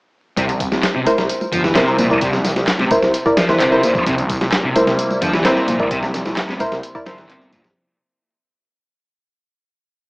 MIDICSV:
0, 0, Header, 1, 6, 480
1, 0, Start_track
1, 0, Tempo, 461538
1, 386, Time_signature, 4, 2, 24, 8
1, 10496, End_track
2, 0, Start_track
2, 0, Title_t, "Synth stab"
2, 0, Program_c, 0, 62
2, 1109, Note_on_c, 0, 64, 82
2, 1109, Note_on_c, 0, 70, 80
2, 1109, Note_on_c, 0, 72, 92
2, 1799, Note_off_c, 0, 64, 0
2, 1799, Note_off_c, 0, 70, 0
2, 1799, Note_off_c, 0, 72, 0
2, 1828, Note_on_c, 0, 64, 102
2, 1828, Note_on_c, 0, 70, 96
2, 1828, Note_on_c, 0, 72, 114
2, 1930, Note_off_c, 0, 64, 0
2, 1930, Note_off_c, 0, 70, 0
2, 1930, Note_off_c, 0, 72, 0
2, 1950, Note_on_c, 0, 64, 81
2, 1950, Note_on_c, 0, 70, 74
2, 1951, Note_on_c, 0, 72, 85
2, 2085, Note_off_c, 0, 64, 0
2, 2085, Note_off_c, 0, 70, 0
2, 2085, Note_off_c, 0, 72, 0
2, 2190, Note_on_c, 0, 70, 72
2, 2191, Note_on_c, 0, 64, 85
2, 2191, Note_on_c, 0, 74, 91
2, 2325, Note_off_c, 0, 64, 0
2, 2325, Note_off_c, 0, 70, 0
2, 2325, Note_off_c, 0, 74, 0
2, 3028, Note_on_c, 0, 64, 92
2, 3029, Note_on_c, 0, 70, 85
2, 3029, Note_on_c, 0, 72, 98
2, 3248, Note_off_c, 0, 64, 0
2, 3248, Note_off_c, 0, 70, 0
2, 3248, Note_off_c, 0, 72, 0
2, 3386, Note_on_c, 0, 74, 105
2, 3387, Note_on_c, 0, 64, 94
2, 3387, Note_on_c, 0, 70, 90
2, 3590, Note_off_c, 0, 74, 0
2, 3591, Note_off_c, 0, 64, 0
2, 3591, Note_off_c, 0, 70, 0
2, 3628, Note_on_c, 0, 64, 88
2, 3628, Note_on_c, 0, 70, 77
2, 3628, Note_on_c, 0, 72, 98
2, 3838, Note_off_c, 0, 64, 0
2, 3838, Note_off_c, 0, 70, 0
2, 3839, Note_off_c, 0, 72, 0
2, 3867, Note_on_c, 0, 72, 113
2, 3868, Note_on_c, 0, 64, 97
2, 3868, Note_on_c, 0, 70, 90
2, 4087, Note_off_c, 0, 64, 0
2, 4087, Note_off_c, 0, 70, 0
2, 4087, Note_off_c, 0, 72, 0
2, 4949, Note_on_c, 0, 64, 86
2, 4949, Note_on_c, 0, 70, 79
2, 4949, Note_on_c, 0, 72, 97
2, 5639, Note_off_c, 0, 64, 0
2, 5639, Note_off_c, 0, 70, 0
2, 5639, Note_off_c, 0, 72, 0
2, 5669, Note_on_c, 0, 64, 98
2, 5669, Note_on_c, 0, 70, 93
2, 5669, Note_on_c, 0, 72, 111
2, 5771, Note_off_c, 0, 64, 0
2, 5771, Note_off_c, 0, 70, 0
2, 5771, Note_off_c, 0, 72, 0
2, 5790, Note_on_c, 0, 64, 79
2, 5790, Note_on_c, 0, 70, 72
2, 5791, Note_on_c, 0, 72, 88
2, 5925, Note_off_c, 0, 64, 0
2, 5925, Note_off_c, 0, 70, 0
2, 5925, Note_off_c, 0, 72, 0
2, 6029, Note_on_c, 0, 64, 85
2, 6029, Note_on_c, 0, 70, 76
2, 6031, Note_on_c, 0, 74, 87
2, 6164, Note_off_c, 0, 64, 0
2, 6164, Note_off_c, 0, 70, 0
2, 6165, Note_off_c, 0, 74, 0
2, 6865, Note_on_c, 0, 64, 93
2, 6867, Note_on_c, 0, 70, 84
2, 6867, Note_on_c, 0, 72, 102
2, 7086, Note_off_c, 0, 64, 0
2, 7087, Note_off_c, 0, 70, 0
2, 7087, Note_off_c, 0, 72, 0
2, 7226, Note_on_c, 0, 74, 101
2, 7227, Note_on_c, 0, 64, 90
2, 7227, Note_on_c, 0, 70, 87
2, 7322, Note_off_c, 0, 64, 0
2, 7322, Note_off_c, 0, 70, 0
2, 7322, Note_off_c, 0, 74, 0
2, 7346, Note_on_c, 0, 64, 96
2, 7346, Note_on_c, 0, 72, 111
2, 7348, Note_on_c, 0, 70, 89
2, 8052, Note_off_c, 0, 64, 0
2, 8052, Note_off_c, 0, 72, 0
2, 8053, Note_off_c, 0, 70, 0
2, 10496, End_track
3, 0, Start_track
3, 0, Title_t, "Analog synth pad"
3, 0, Program_c, 1, 89
3, 4229, Note_on_c, 1, 55, 75
3, 4232, Note_on_c, 1, 48, 83
3, 4232, Note_on_c, 1, 64, 88
3, 4233, Note_on_c, 1, 58, 76
3, 8029, Note_off_c, 1, 55, 0
3, 8030, Note_off_c, 1, 64, 0
3, 8031, Note_off_c, 1, 48, 0
3, 8031, Note_off_c, 1, 58, 0
3, 10496, End_track
4, 0, Start_track
4, 0, Title_t, "Distorted electric guitar"
4, 0, Program_c, 2, 30
4, 387, Note_on_c, 2, 48, 103
4, 464, Note_off_c, 2, 48, 0
4, 986, Note_on_c, 2, 48, 94
4, 1032, Note_off_c, 2, 48, 0
4, 1584, Note_on_c, 2, 53, 76
4, 1694, Note_off_c, 2, 53, 0
4, 1707, Note_on_c, 2, 52, 101
4, 1820, Note_off_c, 2, 52, 0
4, 1826, Note_on_c, 2, 48, 81
4, 2054, Note_off_c, 2, 48, 0
4, 2066, Note_on_c, 2, 46, 79
4, 2143, Note_off_c, 2, 46, 0
4, 2305, Note_on_c, 2, 48, 104
4, 2382, Note_off_c, 2, 48, 0
4, 2908, Note_on_c, 2, 48, 96
4, 2953, Note_off_c, 2, 48, 0
4, 3507, Note_on_c, 2, 53, 79
4, 3616, Note_off_c, 2, 53, 0
4, 3629, Note_on_c, 2, 52, 104
4, 3741, Note_off_c, 2, 52, 0
4, 3745, Note_on_c, 2, 48, 80
4, 3973, Note_off_c, 2, 48, 0
4, 3985, Note_on_c, 2, 46, 80
4, 4063, Note_off_c, 2, 46, 0
4, 4224, Note_on_c, 2, 48, 99
4, 4302, Note_off_c, 2, 48, 0
4, 4828, Note_on_c, 2, 48, 96
4, 4873, Note_off_c, 2, 48, 0
4, 5427, Note_on_c, 2, 53, 77
4, 5536, Note_off_c, 2, 53, 0
4, 5551, Note_on_c, 2, 52, 107
4, 5662, Note_off_c, 2, 52, 0
4, 5668, Note_on_c, 2, 48, 85
4, 5895, Note_off_c, 2, 48, 0
4, 5909, Note_on_c, 2, 46, 80
4, 5985, Note_off_c, 2, 46, 0
4, 6149, Note_on_c, 2, 48, 104
4, 6225, Note_off_c, 2, 48, 0
4, 6748, Note_on_c, 2, 48, 94
4, 6793, Note_off_c, 2, 48, 0
4, 7346, Note_on_c, 2, 53, 79
4, 7455, Note_off_c, 2, 53, 0
4, 7468, Note_on_c, 2, 52, 112
4, 7580, Note_off_c, 2, 52, 0
4, 7587, Note_on_c, 2, 48, 81
4, 7814, Note_off_c, 2, 48, 0
4, 7827, Note_on_c, 2, 46, 82
4, 7904, Note_off_c, 2, 46, 0
4, 10496, End_track
5, 0, Start_track
5, 0, Title_t, "Detuned saw bass"
5, 0, Program_c, 3, 39
5, 386, Note_on_c, 3, 36, 98
5, 699, Note_off_c, 3, 36, 0
5, 749, Note_on_c, 3, 36, 77
5, 837, Note_off_c, 3, 36, 0
5, 1229, Note_on_c, 3, 36, 81
5, 1317, Note_off_c, 3, 36, 0
5, 1585, Note_on_c, 3, 31, 103
5, 1899, Note_off_c, 3, 31, 0
5, 1949, Note_on_c, 3, 36, 94
5, 2620, Note_off_c, 3, 36, 0
5, 2668, Note_on_c, 3, 36, 84
5, 2757, Note_off_c, 3, 36, 0
5, 3148, Note_on_c, 3, 36, 83
5, 3237, Note_off_c, 3, 36, 0
5, 3627, Note_on_c, 3, 31, 86
5, 4179, Note_off_c, 3, 31, 0
5, 4228, Note_on_c, 3, 36, 99
5, 4540, Note_off_c, 3, 36, 0
5, 4586, Note_on_c, 3, 36, 81
5, 4676, Note_off_c, 3, 36, 0
5, 5066, Note_on_c, 3, 36, 80
5, 5156, Note_off_c, 3, 36, 0
5, 5427, Note_on_c, 3, 31, 98
5, 5739, Note_off_c, 3, 31, 0
5, 5787, Note_on_c, 3, 36, 97
5, 6459, Note_off_c, 3, 36, 0
5, 6510, Note_on_c, 3, 36, 85
5, 6597, Note_off_c, 3, 36, 0
5, 6989, Note_on_c, 3, 36, 85
5, 7077, Note_off_c, 3, 36, 0
5, 7346, Note_on_c, 3, 31, 103
5, 7437, Note_off_c, 3, 31, 0
5, 7468, Note_on_c, 3, 31, 80
5, 8019, Note_off_c, 3, 31, 0
5, 10496, End_track
6, 0, Start_track
6, 0, Title_t, "Drums"
6, 386, Note_on_c, 9, 36, 108
6, 386, Note_on_c, 9, 54, 45
6, 387, Note_on_c, 9, 42, 90
6, 490, Note_off_c, 9, 36, 0
6, 490, Note_off_c, 9, 54, 0
6, 491, Note_off_c, 9, 42, 0
6, 508, Note_on_c, 9, 42, 46
6, 508, Note_on_c, 9, 54, 30
6, 612, Note_off_c, 9, 42, 0
6, 612, Note_off_c, 9, 54, 0
6, 626, Note_on_c, 9, 36, 101
6, 626, Note_on_c, 9, 42, 75
6, 627, Note_on_c, 9, 54, 79
6, 730, Note_off_c, 9, 36, 0
6, 730, Note_off_c, 9, 42, 0
6, 731, Note_off_c, 9, 54, 0
6, 745, Note_on_c, 9, 63, 61
6, 748, Note_on_c, 9, 38, 51
6, 749, Note_on_c, 9, 54, 34
6, 752, Note_on_c, 9, 62, 70
6, 849, Note_off_c, 9, 63, 0
6, 852, Note_off_c, 9, 38, 0
6, 853, Note_off_c, 9, 54, 0
6, 856, Note_off_c, 9, 62, 0
6, 866, Note_on_c, 9, 38, 116
6, 866, Note_on_c, 9, 42, 92
6, 867, Note_on_c, 9, 39, 100
6, 867, Note_on_c, 9, 54, 43
6, 970, Note_off_c, 9, 38, 0
6, 970, Note_off_c, 9, 42, 0
6, 971, Note_off_c, 9, 39, 0
6, 971, Note_off_c, 9, 54, 0
6, 1097, Note_on_c, 9, 63, 60
6, 1107, Note_on_c, 9, 42, 72
6, 1107, Note_on_c, 9, 54, 76
6, 1201, Note_off_c, 9, 63, 0
6, 1211, Note_off_c, 9, 42, 0
6, 1211, Note_off_c, 9, 54, 0
6, 1228, Note_on_c, 9, 54, 35
6, 1229, Note_on_c, 9, 38, 53
6, 1332, Note_off_c, 9, 54, 0
6, 1333, Note_off_c, 9, 38, 0
6, 1346, Note_on_c, 9, 42, 92
6, 1346, Note_on_c, 9, 54, 47
6, 1450, Note_off_c, 9, 42, 0
6, 1450, Note_off_c, 9, 54, 0
6, 1467, Note_on_c, 9, 62, 49
6, 1468, Note_on_c, 9, 54, 32
6, 1571, Note_off_c, 9, 62, 0
6, 1572, Note_off_c, 9, 54, 0
6, 1585, Note_on_c, 9, 42, 71
6, 1586, Note_on_c, 9, 36, 101
6, 1587, Note_on_c, 9, 54, 80
6, 1689, Note_off_c, 9, 42, 0
6, 1690, Note_off_c, 9, 36, 0
6, 1691, Note_off_c, 9, 54, 0
6, 1706, Note_on_c, 9, 38, 53
6, 1707, Note_on_c, 9, 54, 33
6, 1810, Note_off_c, 9, 38, 0
6, 1811, Note_off_c, 9, 54, 0
6, 1824, Note_on_c, 9, 38, 119
6, 1824, Note_on_c, 9, 42, 93
6, 1827, Note_on_c, 9, 39, 108
6, 1827, Note_on_c, 9, 54, 46
6, 1928, Note_off_c, 9, 38, 0
6, 1928, Note_off_c, 9, 42, 0
6, 1931, Note_off_c, 9, 39, 0
6, 1931, Note_off_c, 9, 54, 0
6, 1948, Note_on_c, 9, 54, 31
6, 2052, Note_off_c, 9, 54, 0
6, 2063, Note_on_c, 9, 64, 84
6, 2065, Note_on_c, 9, 42, 73
6, 2065, Note_on_c, 9, 54, 77
6, 2167, Note_off_c, 9, 64, 0
6, 2169, Note_off_c, 9, 42, 0
6, 2169, Note_off_c, 9, 54, 0
6, 2187, Note_on_c, 9, 36, 100
6, 2187, Note_on_c, 9, 54, 33
6, 2291, Note_off_c, 9, 36, 0
6, 2291, Note_off_c, 9, 54, 0
6, 2303, Note_on_c, 9, 42, 87
6, 2305, Note_on_c, 9, 36, 111
6, 2305, Note_on_c, 9, 54, 44
6, 2407, Note_off_c, 9, 42, 0
6, 2409, Note_off_c, 9, 36, 0
6, 2409, Note_off_c, 9, 54, 0
6, 2426, Note_on_c, 9, 38, 47
6, 2427, Note_on_c, 9, 54, 31
6, 2530, Note_off_c, 9, 38, 0
6, 2531, Note_off_c, 9, 54, 0
6, 2545, Note_on_c, 9, 38, 42
6, 2545, Note_on_c, 9, 42, 74
6, 2545, Note_on_c, 9, 54, 82
6, 2551, Note_on_c, 9, 64, 74
6, 2649, Note_off_c, 9, 38, 0
6, 2649, Note_off_c, 9, 42, 0
6, 2649, Note_off_c, 9, 54, 0
6, 2655, Note_off_c, 9, 64, 0
6, 2664, Note_on_c, 9, 63, 74
6, 2666, Note_on_c, 9, 38, 46
6, 2666, Note_on_c, 9, 54, 32
6, 2668, Note_on_c, 9, 62, 67
6, 2768, Note_off_c, 9, 63, 0
6, 2770, Note_off_c, 9, 38, 0
6, 2770, Note_off_c, 9, 54, 0
6, 2772, Note_off_c, 9, 62, 0
6, 2784, Note_on_c, 9, 38, 121
6, 2784, Note_on_c, 9, 42, 91
6, 2786, Note_on_c, 9, 39, 102
6, 2786, Note_on_c, 9, 54, 44
6, 2888, Note_off_c, 9, 38, 0
6, 2888, Note_off_c, 9, 42, 0
6, 2890, Note_off_c, 9, 39, 0
6, 2890, Note_off_c, 9, 54, 0
6, 2901, Note_on_c, 9, 63, 68
6, 2906, Note_on_c, 9, 38, 45
6, 3005, Note_off_c, 9, 63, 0
6, 3010, Note_off_c, 9, 38, 0
6, 3024, Note_on_c, 9, 42, 69
6, 3025, Note_on_c, 9, 54, 83
6, 3026, Note_on_c, 9, 36, 95
6, 3026, Note_on_c, 9, 63, 64
6, 3032, Note_on_c, 9, 62, 37
6, 3128, Note_off_c, 9, 42, 0
6, 3129, Note_off_c, 9, 54, 0
6, 3130, Note_off_c, 9, 36, 0
6, 3130, Note_off_c, 9, 63, 0
6, 3136, Note_off_c, 9, 62, 0
6, 3146, Note_on_c, 9, 38, 46
6, 3148, Note_on_c, 9, 54, 35
6, 3250, Note_off_c, 9, 38, 0
6, 3252, Note_off_c, 9, 54, 0
6, 3265, Note_on_c, 9, 42, 92
6, 3267, Note_on_c, 9, 54, 47
6, 3369, Note_off_c, 9, 42, 0
6, 3371, Note_off_c, 9, 54, 0
6, 3387, Note_on_c, 9, 54, 31
6, 3388, Note_on_c, 9, 36, 94
6, 3491, Note_off_c, 9, 54, 0
6, 3492, Note_off_c, 9, 36, 0
6, 3505, Note_on_c, 9, 38, 123
6, 3505, Note_on_c, 9, 42, 74
6, 3505, Note_on_c, 9, 54, 81
6, 3507, Note_on_c, 9, 64, 79
6, 3609, Note_off_c, 9, 38, 0
6, 3609, Note_off_c, 9, 42, 0
6, 3609, Note_off_c, 9, 54, 0
6, 3611, Note_off_c, 9, 64, 0
6, 3628, Note_on_c, 9, 38, 55
6, 3628, Note_on_c, 9, 54, 35
6, 3732, Note_off_c, 9, 38, 0
6, 3732, Note_off_c, 9, 54, 0
6, 3746, Note_on_c, 9, 39, 114
6, 3746, Note_on_c, 9, 54, 46
6, 3747, Note_on_c, 9, 42, 90
6, 3850, Note_off_c, 9, 39, 0
6, 3850, Note_off_c, 9, 54, 0
6, 3851, Note_off_c, 9, 42, 0
6, 3868, Note_on_c, 9, 54, 31
6, 3972, Note_off_c, 9, 54, 0
6, 3985, Note_on_c, 9, 54, 74
6, 3987, Note_on_c, 9, 42, 72
6, 4089, Note_off_c, 9, 54, 0
6, 4091, Note_off_c, 9, 42, 0
6, 4102, Note_on_c, 9, 64, 81
6, 4108, Note_on_c, 9, 54, 33
6, 4109, Note_on_c, 9, 36, 100
6, 4206, Note_off_c, 9, 64, 0
6, 4212, Note_off_c, 9, 54, 0
6, 4213, Note_off_c, 9, 36, 0
6, 4226, Note_on_c, 9, 54, 44
6, 4228, Note_on_c, 9, 36, 111
6, 4228, Note_on_c, 9, 42, 86
6, 4330, Note_off_c, 9, 54, 0
6, 4332, Note_off_c, 9, 36, 0
6, 4332, Note_off_c, 9, 42, 0
6, 4348, Note_on_c, 9, 54, 31
6, 4350, Note_on_c, 9, 42, 45
6, 4452, Note_off_c, 9, 54, 0
6, 4454, Note_off_c, 9, 42, 0
6, 4467, Note_on_c, 9, 36, 101
6, 4467, Note_on_c, 9, 42, 72
6, 4467, Note_on_c, 9, 54, 80
6, 4571, Note_off_c, 9, 36, 0
6, 4571, Note_off_c, 9, 42, 0
6, 4571, Note_off_c, 9, 54, 0
6, 4588, Note_on_c, 9, 38, 49
6, 4588, Note_on_c, 9, 54, 31
6, 4590, Note_on_c, 9, 63, 72
6, 4594, Note_on_c, 9, 62, 72
6, 4692, Note_off_c, 9, 38, 0
6, 4692, Note_off_c, 9, 54, 0
6, 4694, Note_off_c, 9, 63, 0
6, 4698, Note_off_c, 9, 62, 0
6, 4706, Note_on_c, 9, 38, 121
6, 4706, Note_on_c, 9, 39, 102
6, 4706, Note_on_c, 9, 42, 89
6, 4706, Note_on_c, 9, 54, 42
6, 4810, Note_off_c, 9, 38, 0
6, 4810, Note_off_c, 9, 39, 0
6, 4810, Note_off_c, 9, 42, 0
6, 4810, Note_off_c, 9, 54, 0
6, 4946, Note_on_c, 9, 42, 72
6, 4946, Note_on_c, 9, 54, 81
6, 4949, Note_on_c, 9, 63, 74
6, 5050, Note_off_c, 9, 42, 0
6, 5050, Note_off_c, 9, 54, 0
6, 5053, Note_off_c, 9, 63, 0
6, 5068, Note_on_c, 9, 38, 54
6, 5070, Note_on_c, 9, 54, 35
6, 5172, Note_off_c, 9, 38, 0
6, 5174, Note_off_c, 9, 54, 0
6, 5187, Note_on_c, 9, 42, 96
6, 5188, Note_on_c, 9, 54, 46
6, 5291, Note_off_c, 9, 42, 0
6, 5292, Note_off_c, 9, 54, 0
6, 5308, Note_on_c, 9, 54, 32
6, 5308, Note_on_c, 9, 62, 54
6, 5412, Note_off_c, 9, 54, 0
6, 5412, Note_off_c, 9, 62, 0
6, 5425, Note_on_c, 9, 42, 75
6, 5425, Note_on_c, 9, 54, 78
6, 5426, Note_on_c, 9, 36, 103
6, 5529, Note_off_c, 9, 42, 0
6, 5529, Note_off_c, 9, 54, 0
6, 5530, Note_off_c, 9, 36, 0
6, 5547, Note_on_c, 9, 38, 53
6, 5547, Note_on_c, 9, 54, 33
6, 5651, Note_off_c, 9, 38, 0
6, 5651, Note_off_c, 9, 54, 0
6, 5664, Note_on_c, 9, 39, 113
6, 5664, Note_on_c, 9, 54, 44
6, 5666, Note_on_c, 9, 38, 120
6, 5666, Note_on_c, 9, 42, 91
6, 5768, Note_off_c, 9, 39, 0
6, 5768, Note_off_c, 9, 54, 0
6, 5770, Note_off_c, 9, 38, 0
6, 5770, Note_off_c, 9, 42, 0
6, 5787, Note_on_c, 9, 54, 32
6, 5891, Note_off_c, 9, 54, 0
6, 5905, Note_on_c, 9, 54, 73
6, 5906, Note_on_c, 9, 42, 71
6, 5908, Note_on_c, 9, 64, 86
6, 6009, Note_off_c, 9, 54, 0
6, 6010, Note_off_c, 9, 42, 0
6, 6012, Note_off_c, 9, 64, 0
6, 6026, Note_on_c, 9, 54, 34
6, 6028, Note_on_c, 9, 36, 101
6, 6130, Note_off_c, 9, 54, 0
6, 6132, Note_off_c, 9, 36, 0
6, 6145, Note_on_c, 9, 42, 93
6, 6145, Note_on_c, 9, 54, 43
6, 6146, Note_on_c, 9, 36, 112
6, 6249, Note_off_c, 9, 42, 0
6, 6249, Note_off_c, 9, 54, 0
6, 6250, Note_off_c, 9, 36, 0
6, 6267, Note_on_c, 9, 54, 29
6, 6268, Note_on_c, 9, 38, 49
6, 6371, Note_off_c, 9, 54, 0
6, 6372, Note_off_c, 9, 38, 0
6, 6386, Note_on_c, 9, 54, 74
6, 6387, Note_on_c, 9, 38, 41
6, 6387, Note_on_c, 9, 42, 73
6, 6388, Note_on_c, 9, 64, 81
6, 6490, Note_off_c, 9, 54, 0
6, 6491, Note_off_c, 9, 38, 0
6, 6491, Note_off_c, 9, 42, 0
6, 6492, Note_off_c, 9, 64, 0
6, 6504, Note_on_c, 9, 62, 67
6, 6506, Note_on_c, 9, 63, 74
6, 6508, Note_on_c, 9, 38, 47
6, 6509, Note_on_c, 9, 54, 33
6, 6608, Note_off_c, 9, 62, 0
6, 6610, Note_off_c, 9, 63, 0
6, 6612, Note_off_c, 9, 38, 0
6, 6613, Note_off_c, 9, 54, 0
6, 6626, Note_on_c, 9, 38, 120
6, 6626, Note_on_c, 9, 39, 111
6, 6626, Note_on_c, 9, 42, 89
6, 6626, Note_on_c, 9, 54, 40
6, 6730, Note_off_c, 9, 38, 0
6, 6730, Note_off_c, 9, 39, 0
6, 6730, Note_off_c, 9, 42, 0
6, 6730, Note_off_c, 9, 54, 0
6, 6743, Note_on_c, 9, 63, 64
6, 6748, Note_on_c, 9, 38, 42
6, 6847, Note_off_c, 9, 63, 0
6, 6852, Note_off_c, 9, 38, 0
6, 6857, Note_on_c, 9, 63, 60
6, 6862, Note_on_c, 9, 62, 36
6, 6865, Note_on_c, 9, 42, 70
6, 6866, Note_on_c, 9, 36, 98
6, 6867, Note_on_c, 9, 54, 79
6, 6961, Note_off_c, 9, 63, 0
6, 6966, Note_off_c, 9, 62, 0
6, 6969, Note_off_c, 9, 42, 0
6, 6970, Note_off_c, 9, 36, 0
6, 6971, Note_off_c, 9, 54, 0
6, 6988, Note_on_c, 9, 38, 46
6, 6988, Note_on_c, 9, 54, 33
6, 7092, Note_off_c, 9, 38, 0
6, 7092, Note_off_c, 9, 54, 0
6, 7106, Note_on_c, 9, 42, 87
6, 7106, Note_on_c, 9, 54, 43
6, 7210, Note_off_c, 9, 42, 0
6, 7210, Note_off_c, 9, 54, 0
6, 7228, Note_on_c, 9, 36, 98
6, 7228, Note_on_c, 9, 54, 31
6, 7332, Note_off_c, 9, 36, 0
6, 7332, Note_off_c, 9, 54, 0
6, 7339, Note_on_c, 9, 64, 83
6, 7346, Note_on_c, 9, 38, 120
6, 7346, Note_on_c, 9, 42, 71
6, 7347, Note_on_c, 9, 54, 74
6, 7443, Note_off_c, 9, 64, 0
6, 7450, Note_off_c, 9, 38, 0
6, 7450, Note_off_c, 9, 42, 0
6, 7451, Note_off_c, 9, 54, 0
6, 7468, Note_on_c, 9, 38, 54
6, 7468, Note_on_c, 9, 54, 31
6, 7572, Note_off_c, 9, 38, 0
6, 7572, Note_off_c, 9, 54, 0
6, 7586, Note_on_c, 9, 42, 82
6, 7587, Note_on_c, 9, 39, 111
6, 7587, Note_on_c, 9, 54, 41
6, 7690, Note_off_c, 9, 42, 0
6, 7691, Note_off_c, 9, 39, 0
6, 7691, Note_off_c, 9, 54, 0
6, 7710, Note_on_c, 9, 54, 29
6, 7814, Note_off_c, 9, 54, 0
6, 7826, Note_on_c, 9, 36, 87
6, 7826, Note_on_c, 9, 42, 67
6, 7828, Note_on_c, 9, 54, 71
6, 7930, Note_off_c, 9, 36, 0
6, 7930, Note_off_c, 9, 42, 0
6, 7932, Note_off_c, 9, 54, 0
6, 7945, Note_on_c, 9, 64, 82
6, 7949, Note_on_c, 9, 38, 51
6, 7950, Note_on_c, 9, 54, 31
6, 8049, Note_off_c, 9, 64, 0
6, 8053, Note_off_c, 9, 38, 0
6, 8054, Note_off_c, 9, 54, 0
6, 10496, End_track
0, 0, End_of_file